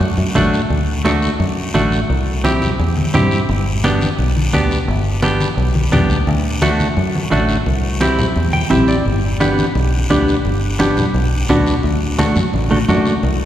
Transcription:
0.00 F#2, high conga, long guiro
0.18 F#2
0.35 A1 A3 D4 F#4, high conga, low conga, short guiro
0.54 short guiro
0.70 D2, high conga, long guiro
1.05 A3 D4 F#4, high conga, short guiro
1.22 short guiro
1.40 F#2, high conga, long guiro
1.74 A1 A3 D4 F#4, high conga, short guiro
1.92 short guiro
2.10 C2, high conga, long guiro
2.44 C4 E4 G4, high conga, short guiro
2.62 low conga, short guiro
2.79 E2, high conga, long guiro
2.97 high conga
3.14 G2 C4 E4 G4, high conga, low conga, short guiro
3.31 short guiro
3.49 G1, high conga, long guiro
3.84 B3 D4 G4, high conga, short guiro
4.01 high conga, short guiro
4.19 B1, high conga, long guiro
4.37 high conga
4.53 D2 B3 D4 G4, high conga, short guiro
4.71 short guiro
4.88 G1, high conga, long guiro
5.22 B3 D4 G4, high conga, short guiro
5.40 high conga, short guiro
5.57 B1, high conga, long guiro
5.75 high conga
5.92 E2 B3 D4 G4, high conga, low conga, short guiro
6.10 D2, short guiro
6.27 D2, high conga, long guiro
6.62 A3 D4 F#4, high conga, short guiro
6.79 high conga, short guiro
6.97 F#2, high conga, long guiro
7.15 high conga
7.31 A1 A3 D4 F#4, high conga, short guiro
7.49 short guiro
7.66 C2, high conga, long guiro
8.01 C4 E4 G4, high conga, short guiro
8.18 low conga, short guiro
8.36 E2, high conga, long guiro
8.53 G5, high conga
8.70 A1 C4 E4 G4 E5, high conga, low conga, short guiro
8.88 D5, short guiro
9.05 G1, high conga, long guiro
9.40 B3 D4 G4, high conga, short guiro
9.58 high conga, short guiro
9.75 B1, high conga, long guiro
10.10 D2 B3 D4 G4, high conga, short guiro
10.28 short guiro
10.45 G1, high conga, long guiro
10.79 B3 D4 G4, high conga, short guiro
10.97 low conga, short guiro
11.14 B1, high conga, long guiro
11.49 D2 B3 D4 F#4, high conga, low conga, short guiro
11.66 short guiro
11.83 D2, high conga, long guiro
12.18 A3 D4 F#4, high conga, short guiro
12.36 F#2, high conga, short guiro
12.54 A1, high conga, long guiro
12.71 A3 D4 F#4, high conga
12.88 F#2 A3 D4 F#4, high conga, short guiro
13.06 short guiro
13.23 C2, high conga, long guiro

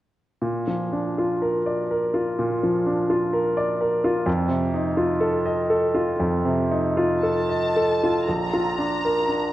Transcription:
0.42 A#2
0.67 F3
0.92 D4
1.18 F4
1.42 A#4
1.66 D5
1.91 A#4
2.14 F4
2.39 A#2
2.63 F3
2.86 D4
3.10 F4
3.33 A#4
3.57 D5
3.81 A#4
4.04 F4
4.26 F2
4.49 C3
4.74 D#4
4.97 F4
5.21 A4
5.46 D#5
5.70 A4
5.95 F4
6.20 F2
6.45 C3
6.71 D#4
6.97 F4
7.22 A4 A5
7.49 D#5
7.77 A4
8.04 F4
8.27 A#1 A#5
8.53 F4
8.78 D4
9.05 A#4
9.29 D4

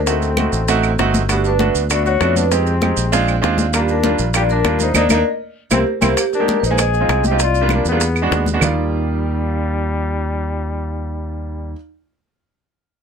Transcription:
Already playing: D2
0.06 A3 C4 D#4 F#4 A4, high bongo, high conga, maracas
0.21 high bongo, high conga, maracas
0.37 A3 C4 D#4 F#4, high bongo, high conga, claves, maracas
0.53 A1, maracas
0.68 A3 C4 D#4 F#4, high bongo, high conga, maracas
0.83 high conga, claves, maracas
0.99 G1 A3 C4 D#4 F#4, high bongo, low bongo, high conga, maracas
1.14 high bongo, high conga, maracas
1.29 A3 B3 D4 F#4 G4, high bongo, high conga, claves, maracas
1.44 D4 B4, high bongo, high conga, maracas
1.59 A3 B3 D4 F#4, high bongo, high conga, maracas
1.75 D2, high conga, maracas
1.90 A3 B3 D4 F#4 D5, high bongo, claves, maracas
2.05 F#4 C#5, high bongo, high conga, maracas
2.21 F2 A3 B3 D4 F#4, high bongo, low bongo, high conga, claves, maracas
2.36 D4 B4, high bongo, high conga, maracas
2.52 G#3 C4 D#4 G4 G#4, high bongo, high conga, maracas
2.67 high bongo, high conga, maracas
2.81 G#3 C4 D#4 G4, high bongo, high conga, claves, maracas
2.97 A#1, maracas
3.12 G#3 C4 D4 F4, high bongo, high conga, maracas
3.28 high conga, claves, maracas
3.42 D#2 G#3 C4 D4 F4 D5, high bongo, low bongo, high conga, maracas
3.57 F5, high bongo, high conga, maracas
3.73 G3 A#3 D4 F4 G4, high bongo, high conga, claves, maracas
3.88 D4 A#4, high bongo, high conga, maracas
4.03 G3 A#3 D4 F4, high bongo, high conga, maracas
4.18 A#1, high conga, maracas
4.34 G3 A#3 D4 F4 G4 D5, high bongo, high conga, claves, maracas
4.49 D4 A#4, high bongo, high conga, maracas
4.64 D#2 G3 A#3 D4 F4, high bongo, low bongo, high conga, claves, maracas
4.79 D#4, high bongo, high conga, maracas
4.83 C5
4.94 D#2 A#3 D4 D#4 A#4 D5 D#5, low bongo, high conga, claves, maracas
5.09 D#2 A#3 D4 D#4 A#4 D5 D#5, low bongo, high conga, claves, maracas
5.71 C2 A#3 C4 E4 G4 A#4 C5, low bongo, high conga, claves, maracas
6.01 C2 A#3 C4 E4 G4 A#4 C5, low bongo, high conga, claves, maracas
6.17 A#3 G4, high bongo, high conga, claves, maracas
6.33 D4 A#4, high bongo, high conga, maracas
6.40 G#3 A#3 D#4 G4
6.48 high bongo, high conga, maracas
6.60 A#1 D4 B4, high conga, maracas
6.65 D#4 C5
6.70 G#3 A#3 D#4 G#4
6.78 G#4 D#5, high bongo, high conga, claves, maracas
6.94 high bongo, high conga, maracas
7.00 G#3 C4 D#4 F4
7.09 C2, high bongo, low bongo, high conga, claves, maracas
7.24 G4 D#5, high bongo, high conga, maracas
7.31 G#3 C4 D#4 F4
7.39 F4 D5, high bongo, high conga, maracas
7.54 high bongo, high conga, maracas
7.61 G3 A#3 D4 F4
7.69 A#4, high bongo, high conga, claves, maracas
7.74 D4
7.85 E2 B3 G#4, maracas
7.92 G3 A#3 D4 F4
8.01 high bongo, high conga, maracas
8.15 high conga, claves, maracas
8.22 G#3 B3 D4 F#4
8.31 D#2, high bongo, low bongo, high conga, maracas
8.46 high bongo, high conga, maracas
8.54 G#3 B3 D4 F#4
8.59 D#2 G3 A#3 D#4 D5, low bongo, low conga, claves, maracas
8.63 G3 F4

